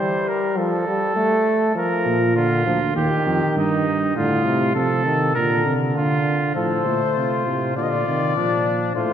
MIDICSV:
0, 0, Header, 1, 5, 480
1, 0, Start_track
1, 0, Key_signature, -2, "major"
1, 0, Tempo, 598205
1, 1416, Time_signature, 4, 2, 24, 8
1, 7328, End_track
2, 0, Start_track
2, 0, Title_t, "Trumpet"
2, 0, Program_c, 0, 56
2, 5257, Note_on_c, 0, 72, 60
2, 6196, Note_off_c, 0, 72, 0
2, 6230, Note_on_c, 0, 74, 52
2, 6282, Note_on_c, 0, 75, 49
2, 6294, Note_off_c, 0, 74, 0
2, 6337, Note_on_c, 0, 74, 59
2, 6349, Note_off_c, 0, 75, 0
2, 7181, Note_off_c, 0, 74, 0
2, 7186, Note_on_c, 0, 72, 68
2, 7328, Note_off_c, 0, 72, 0
2, 7328, End_track
3, 0, Start_track
3, 0, Title_t, "Trumpet"
3, 0, Program_c, 1, 56
3, 0, Note_on_c, 1, 72, 66
3, 228, Note_on_c, 1, 70, 60
3, 240, Note_off_c, 1, 72, 0
3, 460, Note_off_c, 1, 70, 0
3, 465, Note_on_c, 1, 69, 77
3, 1397, Note_off_c, 1, 69, 0
3, 1422, Note_on_c, 1, 70, 72
3, 1890, Note_off_c, 1, 70, 0
3, 1898, Note_on_c, 1, 65, 73
3, 2370, Note_off_c, 1, 65, 0
3, 2378, Note_on_c, 1, 67, 73
3, 2853, Note_off_c, 1, 67, 0
3, 2875, Note_on_c, 1, 63, 70
3, 3338, Note_off_c, 1, 63, 0
3, 3342, Note_on_c, 1, 65, 74
3, 3809, Note_off_c, 1, 65, 0
3, 3814, Note_on_c, 1, 69, 75
3, 4289, Note_off_c, 1, 69, 0
3, 4294, Note_on_c, 1, 70, 73
3, 4608, Note_off_c, 1, 70, 0
3, 4786, Note_on_c, 1, 65, 72
3, 5235, Note_off_c, 1, 65, 0
3, 5259, Note_on_c, 1, 69, 58
3, 5714, Note_off_c, 1, 69, 0
3, 5753, Note_on_c, 1, 65, 55
3, 6226, Note_off_c, 1, 65, 0
3, 6230, Note_on_c, 1, 65, 60
3, 6702, Note_off_c, 1, 65, 0
3, 6707, Note_on_c, 1, 62, 59
3, 7177, Note_off_c, 1, 62, 0
3, 7188, Note_on_c, 1, 65, 59
3, 7328, Note_off_c, 1, 65, 0
3, 7328, End_track
4, 0, Start_track
4, 0, Title_t, "Trombone"
4, 0, Program_c, 2, 57
4, 0, Note_on_c, 2, 55, 69
4, 464, Note_on_c, 2, 53, 77
4, 476, Note_off_c, 2, 55, 0
4, 698, Note_off_c, 2, 53, 0
4, 702, Note_on_c, 2, 55, 72
4, 927, Note_off_c, 2, 55, 0
4, 932, Note_on_c, 2, 57, 83
4, 1404, Note_off_c, 2, 57, 0
4, 1409, Note_on_c, 2, 53, 70
4, 1884, Note_off_c, 2, 53, 0
4, 1894, Note_on_c, 2, 50, 56
4, 2132, Note_off_c, 2, 50, 0
4, 2135, Note_on_c, 2, 53, 63
4, 2245, Note_off_c, 2, 53, 0
4, 2375, Note_on_c, 2, 51, 68
4, 3104, Note_off_c, 2, 51, 0
4, 3339, Note_on_c, 2, 50, 69
4, 3574, Note_on_c, 2, 48, 61
4, 3586, Note_off_c, 2, 50, 0
4, 3813, Note_off_c, 2, 48, 0
4, 3818, Note_on_c, 2, 53, 58
4, 4053, Note_off_c, 2, 53, 0
4, 4058, Note_on_c, 2, 51, 60
4, 4293, Note_off_c, 2, 51, 0
4, 4297, Note_on_c, 2, 50, 68
4, 5245, Note_off_c, 2, 50, 0
4, 5265, Note_on_c, 2, 53, 65
4, 5503, Note_on_c, 2, 57, 54
4, 5515, Note_off_c, 2, 53, 0
4, 5984, Note_off_c, 2, 57, 0
4, 5989, Note_on_c, 2, 48, 56
4, 6232, Note_on_c, 2, 50, 62
4, 6244, Note_off_c, 2, 48, 0
4, 6473, Note_off_c, 2, 50, 0
4, 6478, Note_on_c, 2, 51, 58
4, 6721, Note_on_c, 2, 53, 65
4, 6733, Note_off_c, 2, 51, 0
4, 7185, Note_off_c, 2, 53, 0
4, 7190, Note_on_c, 2, 57, 66
4, 7328, Note_off_c, 2, 57, 0
4, 7328, End_track
5, 0, Start_track
5, 0, Title_t, "Tuba"
5, 0, Program_c, 3, 58
5, 1654, Note_on_c, 3, 46, 88
5, 2105, Note_off_c, 3, 46, 0
5, 2131, Note_on_c, 3, 38, 72
5, 2371, Note_off_c, 3, 38, 0
5, 2376, Note_on_c, 3, 39, 80
5, 2486, Note_off_c, 3, 39, 0
5, 2618, Note_on_c, 3, 41, 75
5, 2728, Note_off_c, 3, 41, 0
5, 2858, Note_on_c, 3, 43, 82
5, 3333, Note_off_c, 3, 43, 0
5, 3342, Note_on_c, 3, 45, 79
5, 3813, Note_off_c, 3, 45, 0
5, 3818, Note_on_c, 3, 48, 77
5, 4294, Note_off_c, 3, 48, 0
5, 4302, Note_on_c, 3, 46, 77
5, 4538, Note_off_c, 3, 46, 0
5, 4542, Note_on_c, 3, 48, 75
5, 4785, Note_on_c, 3, 50, 78
5, 4797, Note_off_c, 3, 48, 0
5, 5260, Note_off_c, 3, 50, 0
5, 5265, Note_on_c, 3, 45, 57
5, 5491, Note_off_c, 3, 45, 0
5, 5505, Note_on_c, 3, 46, 53
5, 5615, Note_off_c, 3, 46, 0
5, 5744, Note_on_c, 3, 48, 50
5, 5989, Note_on_c, 3, 45, 48
5, 6001, Note_off_c, 3, 48, 0
5, 6232, Note_on_c, 3, 46, 53
5, 6244, Note_off_c, 3, 45, 0
5, 6470, Note_off_c, 3, 46, 0
5, 6475, Note_on_c, 3, 48, 56
5, 6711, Note_off_c, 3, 48, 0
5, 6716, Note_on_c, 3, 46, 54
5, 7182, Note_off_c, 3, 46, 0
5, 7188, Note_on_c, 3, 45, 59
5, 7328, Note_off_c, 3, 45, 0
5, 7328, End_track
0, 0, End_of_file